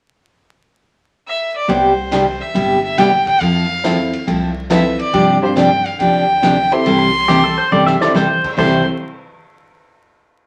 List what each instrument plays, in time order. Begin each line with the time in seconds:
1.28 fiddle E5
1.56 fiddle D5
1.68 upright bass C2, steel-string acoustic guitar C3 G3 B3 E4 G4, fiddle C5, kick, ride
2.11 steel-string acoustic guitar C3 G3 B3 E4 G4, snare, hi-hat pedal, ride
2.41 fiddle E5
2.54 upright bass G1, steel-string acoustic guitar C3 G3 B3 E4 G4, kick, ride
2.84 fiddle E5
2.98 steel-string acoustic guitar C3 G3 B3 E4 G4, fiddle G5, snare, hi-hat pedal, ride
3.26 fiddle G5, kick, ride
3.40 upright bass F2, steel-string acoustic guitar F3 C4 E4 A4, fiddle F5, kick, ride
3.84 steel-string acoustic guitar F3 C4 E4 A4, upright piano C4 E4 F4 A4 C5, snare, hi-hat pedal, ride
4.13 ride
4.27 upright bass C2, steel-string acoustic guitar F3 C4 E4 A4, kick, ride
4.70 steel-string acoustic guitar F3 C4 E4 A4, upright piano C4 E4 F4 A4 B4, fiddle E5, snare, hi-hat pedal, ride
4.99 fiddle D5, ride
5.13 upright bass G2, steel-string acoustic guitar C3 F3 C4 D4 G4, kick, ride
5.42 upright piano C4 D4 F4 G4 C5, fiddle C5
5.56 steel-string acoustic guitar C3 F3 C4 D4 G4, fiddle G5, snare, hi-hat pedal, ride
5.86 fiddle F5, ride
5.99 upright bass D2, steel-string acoustic guitar C3 F3 C4 D4 G4, fiddle G5, kick, ride
6.42 steel-string acoustic guitar C3 F3 C4 D4 G4, snare, hi-hat pedal, ride
6.72 upright piano C4 E4 G4 A4 C5, fiddle C6, ride
6.86 upright bass C2, steel-string acoustic guitar C3 E3 G3 C4 E4 A4, kick, ride
7.28 steel-string acoustic guitar C3 E3 G3 C4 E4 A4, pedal steel guitar G4, snare, hi-hat pedal, ride
7.44 pedal steel guitar A4
7.58 pedal steel guitar C5
7.71 upright bass G1, steel-string acoustic guitar C3 E3 G3 C4 E4 A4, pedal steel guitar D5
7.86 pedal steel guitar E5, snare
8.01 upright piano C4 E4 G4 A4 C5, pedal steel guitar D5, snare
8.14 steel-string acoustic guitar C3 E3 G3 C4 E4 A4, pedal steel guitar C5, snare, hi-hat pedal
8.44 kick, crash
8.57 upright bass C2, steel-string acoustic guitar C3 E3 G3 C4 E4 A4, upright piano C4 E4 G4 A4 C5, pedal steel guitar C5, fiddle C6, kick, crash